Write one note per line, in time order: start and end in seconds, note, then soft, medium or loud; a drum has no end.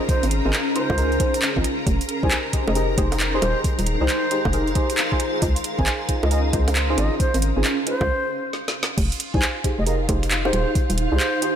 0.00 1.86 C#4 medium
0.00 0.42 D#4 loud
0.00 0.42 F4 medium
0.00 0.42 G#4 medium
0.00 1.86 G#4 medium
0.00 8.09 A#4 medium
0.00 0.42 C5 loud
0.00 1.87 F5 medium
0.00 8.09 A#5 medium
0.00 1.87 C6 medium
0.09 0.26 C5 medium
0.09 kick loud
0.09 closed hi-hat medium
0.23 0.41 G#1 medium
0.23 closed hi-hat medium
0.31 closed hi-hat loud
0.45 0.52 G#1 medium
0.45 0.53 D#4 medium
0.45 0.53 F4 medium
0.45 0.53 G#4 medium
0.45 0.53 C5 medium
0.53 clap loud
0.53 closed hi-hat medium
0.75 0.94 D#4 medium
0.75 0.94 F4 medium
0.75 0.94 G#4 medium
0.75 1.39 C5 loud
0.75 0.94 C5 medium
0.75 closed hi-hat medium
0.90 1.18 C#2 medium
0.90 kick loud
0.90 high bongo medium
0.98 1.11 D#4 medium
0.98 1.11 F4 medium
0.98 1.11 G#4 medium
0.98 1.11 A#4 medium
0.98 closed hi-hat medium
1.12 closed hi-hat soft
1.20 1.34 D#4 loud
1.20 1.34 F4 medium
1.20 1.34 G#4 medium
1.20 1.34 C5 loud
1.20 kick loud
1.20 closed hi-hat medium
1.34 finger snap soft
1.34 closed hi-hat medium
1.42 clap loud
1.42 closed hi-hat medium
1.56 1.63 G#1 medium
1.56 1.64 D#4 medium
1.56 1.64 F4 medium
1.56 1.64 G#4 medium
1.56 1.64 C5 medium
1.56 kick medium
1.64 finger snap soft
1.64 closed hi-hat medium
1.86 1.99 F1 loud
1.86 6.72 D#4 loud
1.86 kick loud
1.86 closed hi-hat medium
2.01 closed hi-hat medium
2.05 8.09 G#4 medium
2.05 closed hi-hat loud
2.23 2.30 C2 medium
2.23 2.31 D#4 medium
2.23 2.31 G4 medium
2.23 2.31 G#4 medium
2.23 2.31 C5 medium
2.23 2.37 G#5 medium
2.23 kick loud
2.31 clap loud
2.31 closed hi-hat medium
2.53 2.72 D#4 medium
2.53 2.72 G4 medium
2.53 2.72 G#4 medium
2.53 2.72 C5 medium
2.53 kick medium
2.53 closed hi-hat medium
2.67 2.96 F1 medium
2.67 2.72 D#5 medium
2.67 high bongo medium
2.75 2.89 D#4 medium
2.75 2.89 G4 medium
2.75 2.89 G#4 medium
2.75 2.89 A#4 medium
2.75 2.84 D#5 medium
2.75 closed hi-hat medium
2.98 3.40 F1 medium
2.98 3.11 D#4 loud
2.98 3.11 G4 medium
2.98 3.11 G#4 medium
2.98 3.11 C5 loud
2.98 kick loud
2.98 closed hi-hat medium
3.12 finger snap soft
3.12 closed hi-hat medium
3.12 high bongo medium
3.17 8.09 F5 medium
3.17 clap loud
3.17 closed hi-hat medium
3.24 8.09 C6 medium
3.34 3.98 D#4 loud
3.34 3.98 G4 medium
3.34 3.98 G#4 medium
3.34 3.98 C5 loud
3.42 3.55 D#1 medium
3.42 3.59 C5 medium
3.42 finger snap soft
3.42 closed hi-hat medium
3.42 high bongo medium
3.64 kick loud
3.64 closed hi-hat medium
3.79 3.97 D#1 medium
3.79 closed hi-hat medium
3.86 closed hi-hat loud
4.01 4.08 C2 medium
4.01 4.08 D#4 medium
4.01 4.08 G4 medium
4.01 4.08 G#4 medium
4.01 4.45 C5 medium
4.01 4.08 C5 loud
4.09 clap loud
4.09 closed hi-hat medium
4.31 4.49 D#4 medium
4.31 4.49 G4 medium
4.31 4.49 G#4 medium
4.31 4.49 C5 medium
4.31 closed hi-hat loud
4.45 4.74 F1 medium
4.45 kick medium
4.45 high bongo medium
4.53 4.67 D#4 medium
4.53 4.67 G4 medium
4.53 4.67 G#4 medium
4.53 4.67 A#4 medium
4.53 closed hi-hat medium
4.67 closed hi-hat soft
4.75 4.89 D#4 loud
4.75 4.89 G4 medium
4.75 4.89 G#4 medium
4.75 4.89 C5 loud
4.75 kick loud
4.75 closed hi-hat medium
4.90 finger snap soft
4.90 closed hi-hat medium
4.98 clap loud
4.98 closed hi-hat medium
5.12 5.75 D#4 loud
5.12 5.75 F4 medium
5.12 5.75 G#4 medium
5.12 5.75 C5 loud
5.12 kick medium
5.20 8.09 C#4 medium
5.20 finger snap soft
5.20 closed hi-hat medium
5.42 5.55 C#2 loud
5.42 kick loud
5.42 closed hi-hat medium
5.56 closed hi-hat medium
5.64 closed hi-hat loud
5.79 5.86 G#1 medium
5.79 5.86 D#4 medium
5.79 5.86 F4 medium
5.79 5.86 G#4 medium
5.79 5.86 C5 loud
5.79 5.92 G#5 medium
5.79 kick medium
5.86 clap loud
5.86 closed hi-hat medium
6.09 6.27 D#4 medium
6.09 6.27 F4 medium
6.09 6.27 G#4 medium
6.09 6.27 C5 medium
6.09 kick medium
6.09 closed hi-hat loud
6.23 6.52 C#2 medium
6.23 6.28 D#5 medium
6.23 high bongo medium
6.31 6.45 D#4 medium
6.31 6.45 F4 medium
6.31 6.45 G#4 medium
6.31 6.45 A#4 medium
6.31 6.40 D#5 medium
6.31 closed hi-hat medium
6.53 6.96 C#2 medium
6.53 6.67 D#4 loud
6.53 6.67 F4 medium
6.53 6.67 G#4 medium
6.53 6.67 C5 loud
6.53 kick loud
6.53 closed hi-hat loud
6.68 finger snap soft
6.68 closed hi-hat medium
6.68 high bongo medium
6.76 clap loud
6.76 closed hi-hat medium
6.90 7.53 D#4 loud
6.90 7.53 F4 medium
6.90 7.53 G#4 medium
6.90 7.53 C5 loud
6.98 7.10 G#1 medium
6.98 7.15 D#5 medium
6.98 finger snap soft
6.98 closed hi-hat loud
6.98 high bongo medium
7.20 7.37 C5 medium
7.20 kick loud
7.20 closed hi-hat medium
7.34 7.53 G#1 medium
7.34 closed hi-hat medium
7.42 closed hi-hat loud
7.56 7.63 G#1 medium
7.56 7.64 D#4 medium
7.56 7.64 F4 medium
7.56 7.64 G#4 medium
7.56 7.64 C5 loud
7.64 clap loud
7.64 closed hi-hat medium
7.86 8.05 D#4 medium
7.86 8.05 F4 medium
7.86 8.05 G#4 medium
7.86 8.50 C5 loud
7.86 8.05 C5 medium
7.86 closed hi-hat loud
8.01 8.09 C#2 medium
8.01 kick medium
8.01 high bongo medium
8.53 snare medium
8.68 snare medium
8.83 snare loud
8.98 9.10 F1 loud
8.98 11.56 D#4 loud
8.98 11.56 F4 medium
8.98 11.56 F5 medium
8.98 kick loud
8.98 closed hi-hat medium
8.98 crash loud
9.12 closed hi-hat medium
9.20 closed hi-hat loud
9.34 9.41 C2 medium
9.34 9.42 D#4 medium
9.34 9.42 G4 medium
9.34 9.42 G#4 medium
9.34 9.42 C5 loud
9.34 9.48 G#5 medium
9.34 kick loud
9.42 clap loud
9.42 closed hi-hat medium
9.64 9.83 D#4 medium
9.64 9.83 G4 medium
9.64 9.83 G#4 medium
9.64 9.83 C5 medium
9.64 kick medium
9.64 closed hi-hat loud
9.79 10.07 F1 medium
9.79 9.84 D#5 medium
9.87 10.00 D#4 medium
9.87 10.00 G4 medium
9.87 10.00 G#4 medium
9.87 10.00 A#4 loud
9.87 9.96 D#5 medium
9.87 closed hi-hat medium
10.09 10.52 F1 medium
10.09 10.22 D#4 loud
10.09 10.22 G4 medium
10.09 10.22 G#4 medium
10.09 10.22 C5 loud
10.09 kick loud
10.09 closed hi-hat loud
10.09 high bongo medium
10.23 finger snap soft
10.23 closed hi-hat medium
10.31 clap loud
10.31 closed hi-hat medium
10.45 11.09 D#4 loud
10.45 11.09 G4 loud
10.45 11.09 G#4 loud
10.45 11.09 C5 loud
10.45 high bongo medium
10.53 10.66 D#1 medium
10.53 10.71 C5 loud
10.53 finger snap soft
10.53 closed hi-hat loud
10.75 kick loud
10.75 closed hi-hat medium
10.90 11.08 D#1 medium
10.90 closed hi-hat medium
10.98 closed hi-hat loud
11.12 11.19 C2 medium
11.12 11.19 D#4 medium
11.12 11.19 G4 medium
11.12 11.19 G#4 medium
11.12 11.56 C5 loud
11.12 11.19 C5 medium
11.20 clap loud
11.20 closed hi-hat medium
11.42 11.56 D#4 medium
11.42 11.56 G4 medium
11.42 11.56 G#4 medium
11.42 11.56 C5 medium
11.42 closed hi-hat loud